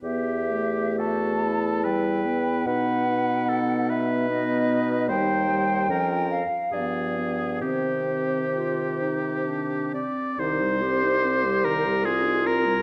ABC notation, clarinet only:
X:1
M:3/4
L:1/8
Q:1/4=72
K:Bphr
V:1 name="Clarinet"
G2 F E3 | ^D D3 D2 | [K:Cm] E2 _D z =B, B, | C2 F E D C |
E G3 F2 |]